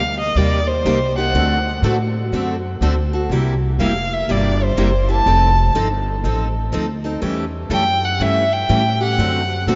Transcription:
Already playing: D2 F5
0.20 D#5
0.35 D#2 C3 G3 A#3 D#4 G4 D5
0.67 C5
0.85 C2 C3 G3 A#3 D#4 G4
1.17 A#3 D#4 G4 F#5
1.34 D2 D3 A3 C4 F#4 A4
1.82 A2 D3 A3 C4 F#4 A4
2.32 F#2 D3 A3 C4 F#4 A4
2.81 D2 D3 A3 C4 F#4 A4
3.13 C4 F#4 A4
3.29 C2 C3 G3 A#3 E4 G4
3.79 F1 C3 G3 A#3 E4 G4 F5
4.13 E5
4.28 G1 C3 G3 A#3 E4 G4 D5
4.63 C5
4.77 F#1 C3 G3 A#3 E4 G4
5.08 A#3 E4 G4 A5
5.26 F1 F3 C4 D#4 A4
5.75 G1 F3 C4 D#4 A4
6.24 A1 F3 C4 D#4 A4
6.72 D2 F3 C4 D#4 A4
7.04 C4 D#4 A4
7.22 E2 E3 G3 A3 C#4 E4 G4 A4
7.70 F#2 E3 G3 A3 C#4 E4 G4 A4 G5
8.05 F#5
8.20 G2 E3 G3 A3 C#4 E4 G4 A4 E5
8.53 G5
8.69 A2 E3 G3 A3 C#4 E4 G4 A4
9.01 A3 C#4 G4 F#5
9.18 F#2 D3 A3 C4 F#4 A4
9.67 A#2 D3 A3 C4 F#4 A4

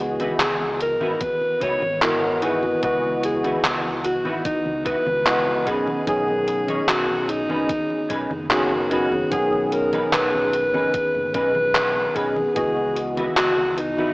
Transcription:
Already playing: C#2 E3 B3 F#4 D#5
0.01 G#4, muted clean electric guitar stroke
0.20 D#4 E4 F#4 B4, closed hi-hat, high conga
0.40 C#2 G#4, clap, closed hi-hat, high conga
0.60 high conga
0.80 A#4, muted clean electric guitar stroke, closed hi-hat
1.01 G#1 D#4 E4 F#4 B4, high conga
1.21 B4, kick, closed hi-hat, high conga
1.42 high conga
1.60 C#2 D#4 E4 F#4 B4 C#5, kick, closed hi-hat
1.82 G#1, high conga
2.01 E3 B3 F#4 A#4 D#5, clap, closed hi-hat, high conga
2.22 high conga
2.42 E3 B3 D#4 E4 F#4 G#4 B4 D#5, closed hi-hat
2.63 high conga
2.82 C#2 E3 B3 F#4 B4 D#5, kick, closed hi-hat, high conga
3.04 high conga
3.23 G#4, muted clean electric guitar stroke, closed hi-hat
3.43 D#4 E4 F#4 B4, closed hi-hat, high conga
3.64 C#2, clap, closed hi-hat, high conga
3.85 high conga
4.04 F#4, muted clean electric guitar stroke, closed hi-hat
4.24 G#1 D#4 E4 F#4 B4, high conga
4.45 D#4, kick, closed hi-hat, high conga
4.66 C#2, high conga
4.85 D#4 E4 F#4 B4, kick, closed hi-hat
5.06 C#2, high conga
5.25 E3 B3 F#4 D#5, clap, closed hi-hat, high conga
5.47 high conga
5.66 B1 D#3 B3 C#4 D#4 G#4 B4, kick, closed hi-hat
5.87 high conga
6.06 B1 D#3 B3 C#4 G#4, kick, closed hi-hat, high conga
6.28 high conga
6.47 muted clean electric guitar stroke, closed hi-hat
6.68 C#4 D#4 G#4 C#5, closed hi-hat, high conga
6.88 B1 F#4, clap, closed hi-hat, high conga
7.09 high conga
7.28 D#4, muted clean electric guitar stroke, closed hi-hat
7.49 F#1 C#4 D#4 G#4 B4, high conga
7.69 kick, closed hi-hat, high conga
7.90 high conga
8.09 B1 C#4 D#4 G#4 B4, kick, closed hi-hat
8.31 F#1, high conga
8.50 D#3 B3 C#4 F#4 G#4, clap, closed hi-hat, high conga
8.71 high conga
8.90 D#3 B3 C#4 D#4 F#4 G#4 B4, closed hi-hat
9.12 high conga
9.30 B1 D#3 B3 C#4 G#4, kick, closed hi-hat, high conga
9.52 high conga
9.72 A#4, muted clean electric guitar stroke, closed hi-hat
9.92 C#4 D#4 G#4 B4, closed hi-hat, high conga
10.13 B1 B4, clap, closed hi-hat, high conga
10.33 high conga
10.53 muted clean electric guitar stroke, closed hi-hat
10.73 F#1 C#4 D#4 G#4 B4, high conga
10.94 kick, closed hi-hat, high conga
11.15 F#1, high conga
11.34 B1 C#4 D#4 G#4 B4, kick, closed hi-hat
11.55 high conga
11.75 clap, closed hi-hat, high conga
11.95 high conga
12.15 B1 D#3 B3 C#4 D#4 G#4 B4, kick, closed hi-hat
12.36 high conga
12.54 C#2 E3 B3 F#4 G#4 D#5, kick, closed hi-hat, high conga
12.77 high conga
12.96 muted clean electric guitar stroke, closed hi-hat
13.17 D#4 E4 F#4 B4, closed hi-hat, high conga
13.37 C#2 F#4, clap, closed hi-hat, high conga
13.58 high conga
13.77 D#4, muted clean electric guitar stroke, closed hi-hat
13.98 G#1 D#4 E4 F#4 B4, high conga

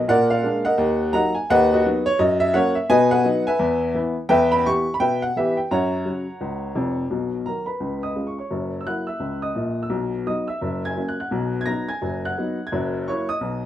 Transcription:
0.08 A#2 A#4 D5 F#5
0.30 A#4 D5 F5
0.43 G#3 A#3 D4
0.65 A#4 D#5 F#5
0.78 D#2
1.13 F#3 A#3 D#4 D#5 F#5 A#5
1.35 G#5
1.50 D#2 B4 D#5 F#5
1.73 F#4 B4 D#5
1.85 F#3 B3 D#4
2.06 C#5
2.19 F#2 D#5
2.40 E5
2.54 F#3 A#3 C#4 A#4 C#5 F#5
2.75 E5
2.89 B2 B4 D#5 G#5
3.11 B4 D#5 F#5
3.24 F#3 B3 D#4
3.47 B4 E5 G#5
3.59 E2
3.94 E3 B3 E4
4.29 E2 B4 E5 G5
4.52 B5
4.66 E3 B3 G4 C#6
4.94 B5
5.00 B2 B4 E5 G5
5.22 F#5
5.36 E3 B3 G4 B4 E5
5.57 G5
5.71 F#2 C#5 F#5 A#5
6.05 C#3 F#3 F#4
6.41 C#2
6.75 F1 F2
7.10 B1 B2
7.46 D#3 F#3 F#4 A#4 A#5
7.66 B4 B5
7.80 C#2 C#3
8.03 D#5 D#6
8.16 G#3 C#4 F4
8.27 C#6
8.38 C#5 C#6
8.51 F#1 F#2
8.81 E6
8.86 F#3 A#3 E4 F#5 F#6
9.07 E5 E6
9.20 C#2 C#3
9.42 D#5 D#6
9.55 A#1 A#2
9.83 E6
9.89 B1 B2
10.26 F#3 B3 D#4 D#5 D#6
10.48 E5 E6
10.62 F#1 F#2
10.85 G#5 G#6
10.96 F#3 A#3 C#4
11.09 F#6
11.20 F#5 F#6
11.31 B1 B2
11.61 G#6
11.66 F#3 B3 D#4 A#5 A#6
11.89 G#5 G#6
12.02 F#1 F#2
12.25 F#5 F#6
12.38 F#3 B3 D#4
12.67 G#6
12.72 F#1 F#2
13.08 F#3 A#3 E4 C#5 C#6
13.29 D#5 D#6
13.41 B1 B2

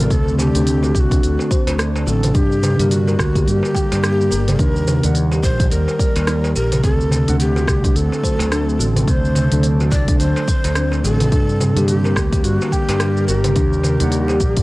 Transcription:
Already playing: D3 F#3 A3 C4 D4 F#4 A4 A#4 D5
0.00 cabasa
0.10 D2 C4 A4, kick, open hi-hat, cabasa
0.28 cabasa
0.39 G4, darbuka tek, darbuka dum, cabasa
0.53 D2 D3 A3 C4 D4, open hi-hat, cabasa
0.57 D4
0.67 open hi-hat, cabasa
0.83 F#4, darbuka ka, cabasa
0.95 G4, kick, cabasa
1.00 F#4
1.11 D4, kick, open hi-hat, cabasa
1.23 D2, open hi-hat, cabasa
1.39 darbuka ka, cabasa
1.51 C5, kick, cabasa
1.67 D2, open hi-hat, darbuka ka, darbuka tek, cabasa
1.78 D4, cross-stick, open hi-hat, cabasa
1.96 darbuka tek, cabasa
2.06 A1 D3 F#3 A3 C4 F#4 A4, cabasa
2.23 open hi-hat, darbuka dum, cabasa
2.34 G2 G3 D4 G4, kick, open hi-hat, cabasa
2.52 cabasa
2.63 darbuka tek, darbuka dum, cabasa
2.75 D3 G3 A#4
2.79 G2 A#3 D4 G4 A#4, open hi-hat, cabasa
2.91 F#4, open hi-hat, cabasa
2.96 A#3
3.08 A#4, darbuka ka, cabasa
3.19 D2, kick, cross-stick, cabasa
3.35 G4, kick, open hi-hat, cabasa
3.46 G2 G4, open hi-hat, cabasa
3.63 darbuka ka, cabasa
3.73 D3 G3 A#3 D4 G4 G5, kick, cabasa
3.92 G2, open hi-hat, darbuka tek, cabasa
4.03 G4, cross-stick, open hi-hat, cabasa
4.21 cabasa
4.31 G1 A#4, cabasa
4.48 open hi-hat, darbuka dum, cabasa
4.59 D#2 D4 A#4, kick, open hi-hat, cabasa
4.76 cabasa
4.86 D#3, darbuka tek, darbuka dum, cabasa
5.02 D#2 D#3 G3 A#3 D#4 D5, open hi-hat, cabasa
5.06 F#5
5.15 open hi-hat, cabasa
5.32 G4, darbuka ka, cabasa
5.43 A#1 C5, kick, cabasa
5.59 D#4, kick, open hi-hat, cabasa
5.71 D#2 A#4, open hi-hat, cabasa
5.88 darbuka ka, cabasa
5.99 D#3 G3 A#3 G4 D5, kick, cabasa
6.16 D#2, open hi-hat, darbuka ka, darbuka tek, cabasa
6.27 D#4, cross-stick, open hi-hat, cabasa
6.44 darbuka tek, cabasa
6.56 A#1 G4 A#4, cabasa
6.72 open hi-hat, darbuka dum, cabasa
6.84 D2 A3 C4 A4, kick, open hi-hat, cabasa
7.01 cabasa
7.11 darbuka tek, darbuka dum, cabasa
7.26 D2 D3 A3 C4 D4 F#5, open hi-hat, cabasa
7.34 C4
7.40 G4, open hi-hat, cabasa
7.46 D4
7.56 F#4, darbuka ka, cabasa
7.68 C2, kick, cross-stick, cabasa
7.84 D4, kick, open hi-hat, cabasa
7.95 D2 A4, open hi-hat, cabasa
8.12 darbuka ka, cabasa
8.22 D3 F#3 A3 C4 F#4 C5, kick, cabasa
8.39 D2, open hi-hat, darbuka tek, cabasa
8.52 D4, cross-stick, open hi-hat, cabasa
8.69 A4, cabasa
8.79 A1 F#4, cabasa
8.96 open hi-hat, darbuka dum, cabasa
9.08 D2 C4 C5, kick, open hi-hat, cabasa
9.25 cabasa
9.35 darbuka tek, darbuka dum, cabasa
9.50 D2 D3 F#3 A3 C4 D4, open hi-hat, cabasa
9.63 open hi-hat, cabasa
9.80 F#4, darbuka ka, cabasa
9.91 C2 D5, kick, cabasa
10.08 D4, kick, open hi-hat, cabasa
10.19 D2 C5, open hi-hat, cabasa
10.36 darbuka ka, cabasa
10.48 C5, kick, cabasa
10.64 D2, open hi-hat, darbuka ka, darbuka tek, cabasa
10.75 D4, cross-stick, open hi-hat, cabasa
10.92 darbuka tek, cabasa
11.03 A1 D3 F#3 A3 C4 F#4 A4, cabasa
11.20 open hi-hat, darbuka dum, cabasa
11.32 G2 G3 D4, kick, open hi-hat, cabasa
11.49 cabasa
11.60 darbuka tek, darbuka dum, cabasa
11.74 G2 D3 G3 A#3 D4 G4, open hi-hat, cabasa
11.79 A#3 G4
11.88 G4, open hi-hat, cabasa
12.04 A#4, darbuka ka, cabasa
12.13 D2 D5, kick, cross-stick
12.17 cabasa
12.33 G4 A#4, kick, open hi-hat, cabasa
12.44 G2 F#4, open hi-hat, cabasa
12.61 darbuka ka, cabasa
12.70 D3 G3 A#3 D4 G4 G5, kick, cabasa
12.74 G4
12.89 G2, open hi-hat, darbuka tek, cabasa
13.00 G4, cross-stick, open hi-hat, cabasa
13.17 cabasa
13.28 G1 G4 A#4, cabasa
13.44 open hi-hat, darbuka dum, cabasa
13.56 D#2 D4, kick, open hi-hat, cabasa
13.73 cabasa
13.81 D#3, darbuka tek, darbuka dum, cabasa
14.00 D#2 D#3 G3 A#3 D#4 D5 F#5, open hi-hat, cabasa
14.12 open hi-hat, cabasa
14.28 G4, darbuka ka, cabasa
14.40 A#1, kick, cabasa
14.57 D#4, kick, open hi-hat, cabasa

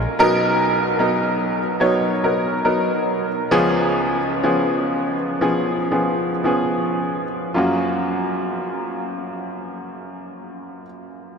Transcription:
Already playing: A#1 A#2 G#3 C#4 F4 A#4
0.19 B1 B2 F#3 B3 D#4 A#4
0.99 F#3 B3 D#4 A#4
1.80 F#3 B3 D#4 C#5
2.23 F#3 B3 D#4 A#4
2.65 F#3 B3 D#4 A#4
3.51 C#2 C#3 F3 B3 C#4 G#4
4.43 F3 B3 C#4 G#4
5.41 F3 B3 C#4 G#4
5.92 F3 B3 C#4 G#4
6.44 F3 B3 C#4 G#4
7.54 F#2 A#3 C#4 F4 F#4

